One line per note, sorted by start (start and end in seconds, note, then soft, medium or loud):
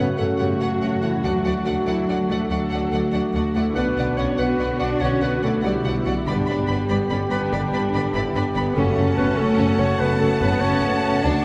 0.00 1.27 F#2 soft
0.00 1.21 C#3 soft
0.00 1.26 C#3 soft
0.00 0.17 A3 soft
0.00 3.73 A3 soft
0.00 0.38 F#4 soft
0.00 1.83 F#4 medium
0.00 3.73 F#4 soft
0.00 0.81 A4 soft
0.00 0.18 B4 medium
0.00 0.59 C#5 soft
0.17 0.28 F#2 soft
0.17 1.44 A3 soft
0.17 0.27 A3 soft
0.17 0.28 A3 soft
0.17 0.39 A4 medium
0.17 0.28 C#5 soft
0.17 0.25 F#5 soft
0.38 0.48 F#2 soft
0.38 0.48 G3 soft
0.38 0.48 A3 soft
0.38 3.77 F#4 soft
0.38 0.60 G4 medium
0.38 0.48 C#5 soft
0.38 0.46 F#5 soft
0.59 0.69 F#2 soft
0.59 1.03 F#3 soft
0.59 0.70 A3 soft
0.59 1.01 F#4 soft
0.59 1.02 C#5 soft
0.59 0.69 C#5 soft
0.59 0.69 F#5 soft
0.82 0.91 F#2 soft
0.82 0.91 A3 soft
0.82 2.07 A4 soft
0.82 0.90 C#5 soft
0.82 0.90 F#5 soft
1.02 1.12 F#2 soft
1.02 1.24 E3 soft
1.02 1.11 A3 soft
1.02 1.24 E4 soft
1.02 1.11 C#5 soft
1.02 1.26 C#5 soft
1.02 1.10 F#5 soft
1.23 1.32 D2 soft
1.23 3.77 D3 soft
1.23 6.10 D3 soft
1.23 1.65 F#3 soft
1.23 1.33 A3 soft
1.23 1.64 F#4 medium
1.23 1.33 D5 soft
1.23 1.32 F#5 soft
1.44 1.53 D2 soft
1.44 2.71 A3 soft
1.44 1.55 A3 soft
1.44 1.54 D5 soft
1.44 1.52 F#5 soft
1.65 1.74 D2 soft
1.65 2.28 F#3 soft
1.65 1.74 A3 soft
1.65 2.28 F#4 medium
1.65 1.73 D5 soft
1.65 5.56 F#5 soft
1.65 1.74 F#5 soft
1.86 1.95 D2 soft
1.86 1.95 A3 soft
1.86 2.09 E4 medium
1.86 1.94 D5 soft
1.86 2.28 D5 soft
1.86 1.96 F#5 soft
2.08 2.17 D2 soft
2.08 2.17 A3 soft
2.08 2.16 D4 soft
2.08 3.34 A4 soft
2.08 2.17 D5 soft
2.08 2.18 F#5 soft
2.29 2.38 D2 soft
2.29 2.50 A3 medium
2.29 2.37 A3 soft
2.29 2.38 F#4 soft
2.29 2.50 A4 medium
2.29 3.13 D5 soft
2.29 2.38 D5 soft
2.29 2.39 F#5 soft
2.50 2.59 D2 soft
2.50 3.33 F#3 soft
2.50 2.59 A3 soft
2.50 4.18 D4 soft
2.50 3.33 F#4 medium
2.50 3.12 A4 soft
2.50 2.59 D5 soft
2.50 2.58 F#5 soft
2.70 2.79 D2 soft
2.70 3.78 A3 soft
2.70 2.82 A3 soft
2.70 2.82 D5 soft
2.70 2.78 F#5 soft
2.91 2.99 D2 soft
2.91 3.01 A3 soft
2.91 3.02 D5 soft
2.91 3.00 F#5 soft
3.12 3.21 D2 soft
3.12 3.21 A3 soft
3.12 3.22 D4 soft
3.12 3.22 D5 soft
3.12 3.55 D5 soft
3.12 3.20 F#5 soft
3.34 3.42 D2 soft
3.34 3.43 A3 soft
3.34 3.55 F#4 soft
3.34 3.78 A4 soft
3.34 3.44 D5 soft
3.34 3.43 F#5 soft
3.55 3.63 D2 soft
3.55 3.63 A3 soft
3.55 3.65 A3 soft
3.55 3.75 E4 soft
3.55 3.75 A4 medium
3.55 4.38 D5 soft
3.55 3.65 D5 soft
3.55 3.63 F#5 soft
3.75 3.84 B1 soft
3.75 6.29 B2 soft
3.75 4.17 B3 medium
3.75 8.73 B3 soft
3.75 3.86 B3 soft
3.75 4.39 D4 medium
3.75 5.95 F#4 soft
3.75 4.19 B4 medium
3.75 3.86 D5 soft
3.75 3.84 F#5 soft
3.97 4.05 B1 soft
3.97 5.21 B3 soft
3.97 4.07 B3 soft
3.97 4.07 D5 soft
3.97 4.05 F#5 soft
4.17 4.27 B1 soft
4.17 4.27 B3 soft
4.17 4.26 C#4 medium
4.17 5.42 D4 soft
4.17 4.38 C#5 medium
4.17 4.28 D5 soft
4.17 4.25 F#5 soft
4.37 4.47 B1 soft
4.37 4.80 B3 medium
4.37 4.48 B3 soft
4.37 5.62 F#4 medium
4.37 4.79 B4 medium
4.37 4.47 D5 soft
4.37 4.80 D5 soft
4.37 4.45 F#5 soft
4.59 4.67 B1 soft
4.59 4.68 B3 soft
4.59 5.84 B4 soft
4.59 4.68 D5 soft
4.59 4.67 F#5 soft
4.79 4.88 B1 soft
4.79 4.90 B3 soft
4.79 5.01 D4 medium
4.79 5.00 D5 medium
4.79 5.63 D5 soft
4.79 4.90 D5 soft
4.79 4.87 F#5 soft
5.00 5.09 B1 medium
5.00 6.29 D3 soft
5.00 5.22 C#4 medium
5.00 5.21 C#5 medium
5.00 5.08 F#5 soft
5.04 5.12 B3 soft
5.04 5.12 D5 soft
5.21 5.29 B1 soft
5.21 5.43 B3 medium
5.21 6.47 B3 soft
5.21 5.31 B3 soft
5.21 5.43 B4 medium
5.21 5.31 D5 soft
5.21 5.29 F#5 soft
5.42 5.50 B1 soft
5.42 5.64 A3 medium
5.42 5.53 B3 soft
5.42 6.68 D4 soft
5.42 5.63 A4 medium
5.42 5.53 D5 soft
5.42 5.51 F#5 soft
5.63 5.72 B1 soft
5.63 6.06 G3 soft
5.63 5.74 B3 soft
5.63 6.26 E4 soft
5.63 6.04 G4 medium
5.63 6.05 D5 soft
5.63 5.73 D5 soft
5.63 5.71 F#5 soft
5.84 5.93 B1 soft
5.84 5.96 B3 soft
5.84 7.09 B4 soft
5.84 5.96 D5 soft
5.84 5.92 F#5 soft
6.05 6.13 B1 medium
6.05 6.13 F#3 soft
6.05 6.16 B3 soft
6.05 6.14 F#4 medium
6.05 6.89 D5 soft
6.05 6.16 D5 soft
6.05 6.14 F#5 soft
6.25 6.34 G1 medium
6.25 8.78 G2 medium
6.25 8.73 D3 soft
6.25 6.66 G3 medium
6.25 6.89 D4 medium
6.25 6.67 G4 medium
6.25 8.73 G4 medium
6.25 6.37 D5 medium
6.25 6.35 B5 soft
6.29 6.37 B3 soft
6.46 6.56 G1 soft
6.46 7.71 B3 soft
6.46 6.58 D5 soft
6.46 6.54 B5 soft
6.51 6.58 B3 soft
6.68 6.77 G1 soft
6.68 7.29 G3 medium
6.68 6.79 B3 soft
6.68 7.93 D4 soft
6.68 7.29 G4 medium
6.68 6.76 B5 soft
6.72 6.80 D5 soft
6.89 6.98 G1 medium
6.89 6.98 B3 medium
6.89 6.99 B3 soft
6.89 7.30 D5 soft
6.89 6.99 D5 soft
6.89 6.97 B5 soft
7.09 7.19 G1 medium
7.09 7.19 B3 soft
7.09 7.19 C#4 medium
7.09 8.35 B4 soft
7.09 7.19 D5 soft
7.09 7.17 B5 soft
7.31 7.40 G1 soft
7.31 7.51 B3 medium
7.31 7.39 B3 soft
7.31 8.13 D4 medium
7.31 7.54 B4 medium
7.31 8.14 D5 soft
7.31 7.40 D5 soft
7.31 7.39 B5 soft
7.51 7.61 G1 medium
7.51 8.78 D3 soft
7.51 8.35 G3 medium
7.51 7.62 B3 soft
7.51 8.36 G4 medium
7.51 7.61 D5 medium
7.51 7.61 B5 soft
7.72 7.81 G1 soft
7.72 8.78 B3 soft
7.72 7.82 B3 soft
7.72 7.82 D5 soft
7.72 7.81 B5 soft
7.94 8.02 G1 medium
7.94 8.03 B3 soft
7.94 8.78 D4 soft
7.94 8.02 D5 soft
7.94 8.02 B5 soft
8.14 8.23 G1 medium
8.14 8.24 B3 soft
8.14 8.35 E4 medium
8.14 8.56 D5 soft
8.14 8.24 D5 medium
8.14 8.22 B5 medium
8.35 8.43 G1 medium
8.35 8.43 B3 soft
8.35 8.44 D4 medium
8.35 8.78 B4 soft
8.35 8.43 D5 soft
8.35 8.44 B5 soft
8.55 8.64 G1 medium
8.55 8.63 B3 soft
8.55 8.76 B3 medium
8.55 8.63 D5 soft
8.55 8.79 D5 soft
8.55 8.64 B5 soft
8.76 8.85 F#1 medium
8.76 9.35 F#2 medium
8.76 11.27 F#2 medium
8.76 9.35 C#3 medium
8.76 9.15 A3 medium
8.76 9.35 A3 medium
8.76 10.00 C#4 medium
8.76 8.96 C#4 medium
8.76 9.35 F#4 medium
8.76 9.15 A4 medium
8.76 11.45 F#5 medium
8.76 11.45 A5 medium
8.97 9.06 F#1 soft
8.97 9.05 C#4 soft
8.97 10.20 C#4 soft
9.17 9.26 F#1 medium
9.17 9.26 B3 medium
9.17 9.25 C#4 soft
9.17 10.41 F#4 soft
9.17 9.39 B4 medium
9.37 9.47 F#1 soft
9.37 10.60 C#3 medium
9.37 9.79 A3 medium
9.37 10.60 A3 medium
9.37 9.46 C#4 soft
9.37 10.60 F#4 medium
9.37 9.81 A4 medium
9.37 9.79 A4 soft
9.58 9.68 F#1 medium
9.58 9.78 C#4 medium
9.58 10.82 C#5 soft
9.79 9.87 F#1 medium
9.79 9.88 C#4 soft
9.79 9.88 C#4 medium
9.79 10.62 A4 soft
9.79 10.01 C#5 medium
10.00 10.08 F#1 soft
10.00 11.26 C#3 soft
10.00 10.21 B3 medium
10.00 11.25 B3 medium
10.00 10.09 C#4 soft
10.00 10.20 B4 medium
10.20 10.29 F#1 soft
10.20 10.41 A3 medium
10.20 11.26 C#4 soft
10.20 10.31 C#4 soft
10.20 10.30 A4 medium
10.40 10.50 F#1 medium
10.40 10.62 B3 medium
10.40 10.61 C#4 medium
10.40 11.45 F#4 medium
10.40 10.62 B4 medium
10.61 10.70 F#1 soft
10.61 11.23 C#3 medium
10.61 11.22 A3 medium
10.61 11.02 C#4 medium
10.61 10.70 C#4 medium
10.61 11.23 F#4 medium
10.61 11.02 A4 medium
10.61 11.02 C#5 medium
10.83 10.91 F#1 soft
10.83 10.92 C#4 soft
10.83 11.26 C#5 soft
11.02 11.24 C#4 medium
11.02 11.45 A4 soft
11.02 11.22 C#5 medium
11.23 11.32 D2 medium
11.23 11.45 D3 medium
11.23 11.45 A3 medium
11.23 11.45 D4 medium
11.23 11.44 D4 medium
11.23 11.45 F#4 medium
11.23 11.45 D5 medium